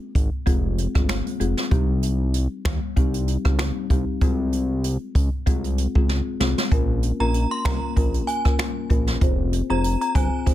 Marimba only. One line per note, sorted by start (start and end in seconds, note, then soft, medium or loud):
0.46 0.91 G#3 medium
0.46 0.91 C4 medium
0.46 0.91 F4 medium
0.46 0.91 G#4 loud
0.95 1.12 G#3 medium
0.95 1.12 C4 medium
0.95 1.12 F4 medium
0.95 1.13 G#4 medium
1.40 1.60 G#3 medium
1.40 1.60 C4 medium
1.40 1.60 F4 medium
1.40 1.61 G#4 medium
1.71 2.29 G3 medium
1.71 2.29 C4 medium
1.71 2.30 D#4 medium
1.71 2.30 G4 loud
2.96 3.41 G3 medium
2.96 3.41 C4 medium
2.96 3.41 D#4 medium
2.96 3.41 G4 loud
3.45 3.62 G3 medium
3.45 3.62 C4 medium
3.45 3.63 D#4 medium
3.45 3.63 G4 medium
3.90 4.10 G3 medium
3.90 4.11 C4 medium
3.90 4.11 D#4 medium
3.90 4.11 G4 medium
4.21 4.80 G#3 medium
4.21 4.80 C4 medium
4.21 4.80 F4 medium
4.21 4.80 G#4 loud
5.46 5.91 G#3 medium
5.46 5.91 C4 medium
5.46 5.91 F4 medium
5.46 5.91 G#4 loud
5.95 6.12 G#3 medium
5.95 6.13 C4 medium
5.95 6.13 F4 medium
5.95 6.13 G#4 medium
6.40 6.61 G#3 medium
6.40 6.61 C4 medium
6.40 6.61 F4 medium
6.40 6.61 G#4 medium
6.72 7.16 A#3 medium
6.72 7.16 C#4 medium
6.72 7.16 F4 medium
6.72 7.16 A#4 loud
7.20 7.37 A#3 medium
7.20 7.38 C#4 medium
7.20 7.38 F4 medium
7.20 7.38 A#4 medium
7.65 7.85 A#3 medium
7.65 7.85 C#4 medium
7.65 7.86 F4 medium
7.65 7.86 A#4 medium
7.96 8.17 A#3 medium
7.96 8.17 C#4 medium
7.96 8.17 F4 medium
7.96 8.17 A#4 loud
8.45 8.87 A#3 medium
8.45 8.87 C#4 medium
8.45 8.87 F4 medium
8.45 8.87 A#4 medium
8.90 9.19 A#3 medium
8.90 9.19 C#4 medium
8.90 9.19 F4 medium
8.90 9.19 A#4 medium
9.21 9.66 C4 medium
9.21 9.66 F4 medium
9.21 9.66 G#4 medium
9.21 9.66 C5 loud
9.70 9.87 C4 medium
9.70 9.87 F4 medium
9.70 9.88 G#4 medium
9.70 9.88 C5 medium
10.15 10.35 C4 medium
10.15 10.35 F4 medium
10.15 10.36 G#4 medium
10.15 10.36 C5 medium
10.46 10.54 C4 medium
10.46 10.54 F4 medium
10.46 10.54 G#4 medium
10.46 10.54 C5 loud